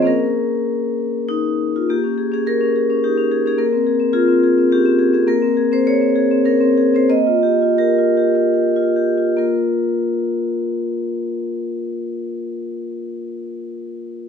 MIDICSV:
0, 0, Header, 1, 2, 480
1, 0, Start_track
1, 0, Tempo, 610376
1, 45, Time_signature, 3, 2, 24, 8
1, 1485, Tempo, 563380
1, 4365, Tempo, 592885
1, 5325, Tempo, 632911
1, 5805, Tempo, 700117
1, 6285, Tempo, 760456
1, 6765, Tempo, 829876
1, 10085, End_track
2, 0, Start_track
2, 0, Title_t, "Vibraphone"
2, 0, Program_c, 0, 11
2, 0, Control_c, 0, 64, 127
2, 18, Note_on_c, 0, 58, 53
2, 36, Note_on_c, 0, 61, 36
2, 44, Note_on_c, 0, 68, 39
2, 54, Note_on_c, 0, 70, 53
2, 62, Control_c, 0, 64, 0
2, 207, Control_c, 0, 64, 127
2, 1011, Note_on_c, 0, 63, 58
2, 1253, Note_off_c, 0, 70, 0
2, 1369, Note_off_c, 0, 63, 0
2, 1384, Note_on_c, 0, 65, 46
2, 1439, Note_off_c, 0, 58, 0
2, 1448, Note_off_c, 0, 61, 0
2, 1452, Note_off_c, 0, 68, 0
2, 1490, Note_on_c, 0, 58, 50
2, 1492, Note_off_c, 0, 65, 0
2, 1496, Note_on_c, 0, 67, 56
2, 1499, Control_c, 0, 64, 0
2, 1612, Note_on_c, 0, 61, 35
2, 1628, Control_c, 0, 64, 127
2, 1730, Note_on_c, 0, 68, 43
2, 1806, Note_off_c, 0, 61, 0
2, 1852, Note_on_c, 0, 61, 39
2, 1857, Note_off_c, 0, 68, 0
2, 1858, Note_off_c, 0, 67, 0
2, 1867, Note_on_c, 0, 68, 55
2, 1966, Note_off_c, 0, 68, 0
2, 1977, Note_on_c, 0, 68, 45
2, 1983, Note_on_c, 0, 70, 68
2, 2048, Note_off_c, 0, 61, 0
2, 2100, Note_on_c, 0, 61, 42
2, 2171, Note_off_c, 0, 68, 0
2, 2226, Note_on_c, 0, 68, 44
2, 2292, Note_off_c, 0, 61, 0
2, 2346, Note_on_c, 0, 61, 41
2, 2414, Note_off_c, 0, 68, 0
2, 2462, Note_off_c, 0, 70, 0
2, 2465, Note_on_c, 0, 67, 60
2, 2471, Note_on_c, 0, 63, 36
2, 2532, Note_off_c, 0, 61, 0
2, 2581, Note_on_c, 0, 61, 43
2, 2582, Note_off_c, 0, 63, 0
2, 2700, Note_on_c, 0, 68, 43
2, 2766, Note_off_c, 0, 61, 0
2, 2813, Note_off_c, 0, 67, 0
2, 2823, Note_on_c, 0, 61, 42
2, 2825, Note_off_c, 0, 68, 0
2, 2835, Note_on_c, 0, 68, 51
2, 2896, Note_off_c, 0, 58, 0
2, 2926, Note_on_c, 0, 58, 48
2, 2931, Note_on_c, 0, 70, 61
2, 2934, Note_off_c, 0, 61, 0
2, 2940, Note_off_c, 0, 68, 0
2, 2941, Control_c, 0, 64, 0
2, 3053, Note_on_c, 0, 60, 40
2, 3056, Control_c, 0, 64, 127
2, 3171, Note_on_c, 0, 68, 38
2, 3238, Note_off_c, 0, 60, 0
2, 3282, Note_on_c, 0, 60, 43
2, 3357, Note_off_c, 0, 68, 0
2, 3397, Note_on_c, 0, 65, 65
2, 3397, Note_on_c, 0, 68, 47
2, 3403, Note_off_c, 0, 70, 0
2, 3472, Note_off_c, 0, 60, 0
2, 3523, Note_on_c, 0, 60, 38
2, 3590, Note_off_c, 0, 68, 0
2, 3655, Note_on_c, 0, 68, 47
2, 3713, Note_off_c, 0, 60, 0
2, 3777, Note_on_c, 0, 60, 41
2, 3839, Note_off_c, 0, 68, 0
2, 3878, Note_off_c, 0, 65, 0
2, 3901, Note_on_c, 0, 67, 63
2, 3903, Note_on_c, 0, 61, 37
2, 3961, Note_off_c, 0, 60, 0
2, 4011, Note_off_c, 0, 61, 0
2, 4013, Note_on_c, 0, 60, 48
2, 4126, Note_on_c, 0, 68, 49
2, 4199, Note_off_c, 0, 60, 0
2, 4248, Note_off_c, 0, 68, 0
2, 4249, Note_on_c, 0, 60, 41
2, 4251, Note_off_c, 0, 67, 0
2, 4258, Note_on_c, 0, 68, 49
2, 4328, Note_off_c, 0, 58, 0
2, 4366, Note_off_c, 0, 60, 0
2, 4370, Note_on_c, 0, 58, 57
2, 4371, Note_off_c, 0, 68, 0
2, 4374, Note_on_c, 0, 70, 64
2, 4377, Control_c, 0, 64, 0
2, 4489, Note_on_c, 0, 60, 37
2, 4504, Control_c, 0, 64, 127
2, 4609, Note_on_c, 0, 68, 40
2, 4674, Note_off_c, 0, 60, 0
2, 4722, Note_off_c, 0, 70, 0
2, 4729, Note_on_c, 0, 60, 44
2, 4738, Note_on_c, 0, 72, 62
2, 4794, Note_off_c, 0, 68, 0
2, 4847, Note_off_c, 0, 72, 0
2, 4852, Note_on_c, 0, 73, 77
2, 4853, Note_on_c, 0, 68, 46
2, 4914, Note_off_c, 0, 60, 0
2, 4966, Note_on_c, 0, 60, 40
2, 5038, Note_off_c, 0, 68, 0
2, 5083, Note_on_c, 0, 68, 50
2, 5156, Note_off_c, 0, 60, 0
2, 5210, Note_on_c, 0, 60, 40
2, 5277, Note_off_c, 0, 68, 0
2, 5323, Note_on_c, 0, 61, 37
2, 5326, Note_on_c, 0, 70, 63
2, 5331, Note_off_c, 0, 73, 0
2, 5398, Note_off_c, 0, 60, 0
2, 5440, Note_off_c, 0, 61, 0
2, 5440, Note_on_c, 0, 60, 45
2, 5568, Note_on_c, 0, 68, 44
2, 5630, Note_off_c, 0, 60, 0
2, 5680, Note_off_c, 0, 70, 0
2, 5697, Note_on_c, 0, 60, 44
2, 5708, Note_on_c, 0, 72, 60
2, 5758, Note_off_c, 0, 68, 0
2, 5776, Note_off_c, 0, 58, 0
2, 5811, Note_on_c, 0, 58, 49
2, 5811, Note_on_c, 0, 75, 70
2, 5812, Note_off_c, 0, 60, 0
2, 5817, Note_off_c, 0, 72, 0
2, 5818, Control_c, 0, 64, 0
2, 5929, Note_on_c, 0, 65, 41
2, 5963, Control_c, 0, 64, 127
2, 6040, Note_on_c, 0, 67, 41
2, 6115, Note_off_c, 0, 65, 0
2, 6171, Note_on_c, 0, 65, 38
2, 6234, Note_off_c, 0, 67, 0
2, 6282, Note_on_c, 0, 67, 47
2, 6283, Note_on_c, 0, 70, 61
2, 6287, Note_off_c, 0, 75, 0
2, 6358, Note_off_c, 0, 65, 0
2, 6409, Note_on_c, 0, 65, 40
2, 6470, Note_off_c, 0, 67, 0
2, 6528, Note_on_c, 0, 67, 44
2, 6595, Note_off_c, 0, 65, 0
2, 6642, Note_on_c, 0, 65, 36
2, 6718, Note_off_c, 0, 67, 0
2, 6762, Note_on_c, 0, 67, 33
2, 6763, Note_off_c, 0, 70, 0
2, 6835, Note_off_c, 0, 65, 0
2, 6881, Note_off_c, 0, 67, 0
2, 6888, Note_on_c, 0, 65, 38
2, 7005, Note_on_c, 0, 67, 41
2, 7085, Note_off_c, 0, 65, 0
2, 7128, Note_on_c, 0, 65, 34
2, 7204, Note_off_c, 0, 67, 0
2, 7232, Note_off_c, 0, 58, 0
2, 7239, Note_on_c, 0, 58, 43
2, 7241, Note_off_c, 0, 65, 0
2, 7248, Note_on_c, 0, 65, 33
2, 7248, Note_on_c, 0, 70, 36
2, 7267, Control_c, 0, 64, 0
2, 7397, Control_c, 0, 64, 127
2, 9693, Note_off_c, 0, 58, 0
2, 9702, Note_off_c, 0, 65, 0
2, 9702, Note_off_c, 0, 70, 0
2, 10085, End_track
0, 0, End_of_file